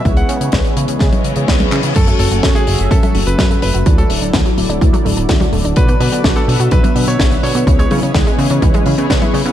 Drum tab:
CC |----------------|x---------------|----------------|----------------|
HH |xxxxxxxxxxxxxxxx|xxoxxxoxxxoxxxox|xxoxxxoxxxoxxxox|xxoxxxoxxxoxxxox|
CP |--------------x-|----------------|----------------|----------------|
SD |----o---o---o---|----o-------o---|----o-------o---|----o-------o---|
T1 |---------o---o--|---------o------|---------o---o--|---------o------|
BD |o---o---o---o---|o---o---o---o---|o---o---o---o---|o---o---o---o---|

CC |----------------|
HH |xxoxxxoxxxoxxxox|
CP |----------------|
SD |----o-------o---|
T1 |--o------o---o--|
BD |o---o---o---o---|